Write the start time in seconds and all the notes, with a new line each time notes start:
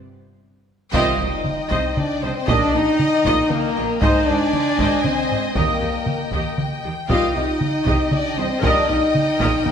0.93 C2 C3 D#3 G3 F4 C5 D#5 F5 G5, taiko, impact
1.19 C2 C3 D#4 C5 D#5
1.45 taiko mid
1.71 C2 C3 C5 D#5, taiko
1.96 D4 D5, taiko mid
2.23 C2 C3 C4 C5 D#5
2.36 C4 C5
2.48 A#1 A#2 D#3 G3 D4 D5 D#5, taiko
2.74 A#1 A#2 D#4 D#5
2.99 taiko mid
3.25 A#1 A#2 D#5, taiko
3.50 A#3 A#4, taiko mid
3.76 A#1 A#2 D#5
4.01 G#1 G#2 D#3 G#3 D#4 C5 D#5 G#5, taiko
4.25 G#1 G#2 D4 C5 D5 D#5
4.53 taiko mid
4.79 G#1 G#2 C5 D#5, taiko
5.04 C4 C5, taiko mid
5.30 G#1 G#2 C5 D#5
5.55 D#2 D#3 G3 A#3 G4 A#4 D#5 G5, taiko
5.81 D#2 D#3 G4 D#5
6.06 taiko mid
6.32 D#2 D#3 G4 D#5, taiko
6.58 taiko mid
6.84 D#2 D#3 G4 D#5
7.09 C2 C3 D#3 G3 F4 G4 D#5 F5, taiko
7.35 C2 C3 D#4 G4 D#5
7.61 taiko mid
7.86 C2 C3 G4 D#5, taiko
8.12 D4 D5, taiko mid
8.37 C2 C3 C4 G4 C5 D#5
8.50 C4 C5
8.62 A#1 A#2 D#3 G3 D4 A#4 D5 D#5 G5, taiko
8.88 A#1 A#2 D#4 A#4 D#5
9.15 taiko mid
9.40 A#1 A#2 A#4 D#5, taiko
9.66 A#3 A#4, taiko mid